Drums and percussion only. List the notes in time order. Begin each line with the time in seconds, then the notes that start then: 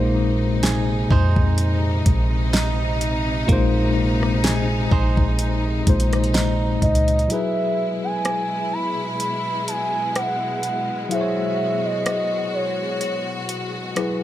0.63 snare, closed hi-hat
1.11 kick
1.36 kick
1.58 closed hi-hat
2.06 kick, closed hi-hat
2.54 snare, closed hi-hat
3.01 closed hi-hat
3.49 kick, closed hi-hat
4.23 cross-stick
4.44 snare, closed hi-hat
4.92 kick
5.17 kick
5.39 closed hi-hat
5.87 kick, closed hi-hat
6.00 closed hi-hat
6.13 cross-stick, closed hi-hat
6.24 closed hi-hat
6.34 snare, closed hi-hat
6.82 kick, closed hi-hat
6.95 closed hi-hat
7.08 closed hi-hat
7.19 closed hi-hat
7.30 closed hi-hat
8.25 cross-stick, closed hi-hat
9.20 closed hi-hat
9.68 closed hi-hat
10.16 cross-stick, closed hi-hat
10.63 closed hi-hat
11.11 closed hi-hat
12.06 cross-stick, closed hi-hat
13.01 closed hi-hat
13.49 closed hi-hat
13.96 cross-stick, closed hi-hat